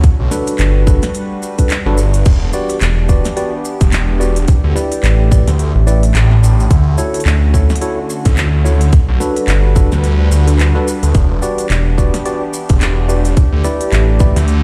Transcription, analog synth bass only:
0.59 1.01 G1 loud
2.81 3.23 E1 loud
5.03 5.45 A1 loud
5.75 6.13 A1 loud
7.26 7.67 D2 loud
9.48 9.89 G1 loud
11.70 12.11 E1 loud
13.92 14.34 A1 loud

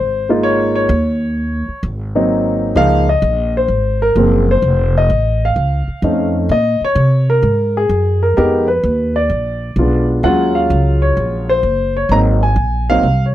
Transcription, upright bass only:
0.00 0.86 G#1 medium
0.89 1.64 D#2 medium
1.68 muted upright bass stroke soft
1.83 2.72 G#1 medium
2.76 3.21 C#2 medium
3.22 3.68 A#1 medium
3.68 4.14 G#1 medium
4.16 4.61 F#1 medium
4.62 5.08 F1 medium
5.10 5.55 A1 medium
5.56 5.86 C#2 medium
5.88 muted upright bass stroke soft
6.02 6.48 F2 medium
6.49 6.79 A#2 medium
6.81 muted upright bass stroke soft
6.95 7.41 C3 loud
7.42 7.88 G#2 medium
7.89 8.35 F#2 medium
8.38 8.83 F2 medium
8.83 9.29 D#2 medium
9.29 9.75 A#1 medium
9.76 10.22 B1 medium
10.23 10.69 D#2 medium
10.70 11.16 C#2 medium
11.17 11.62 A#1 medium
11.63 12.08 F#1 medium
12.09 12.55 G#1 medium
12.56 13.02 A#1 medium
13.03 13.34 C2 medium

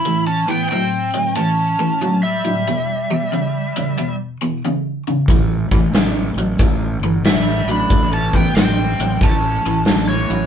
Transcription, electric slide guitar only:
0.00 0.26 B5 medium
0.27 0.48 A5 medium
0.51 0.68 G5 medium
0.69 1.33 G5 loud
1.36 2.20 A5 medium
2.23 4.15 E5 medium
7.27 7.68 E5 medium
7.72 8.12 B5 medium
8.13 8.34 A5 medium
8.37 8.55 G5 medium
8.56 9.19 G5 loud
9.23 10.07 A5 medium
10.09 10.46 C#5 medium

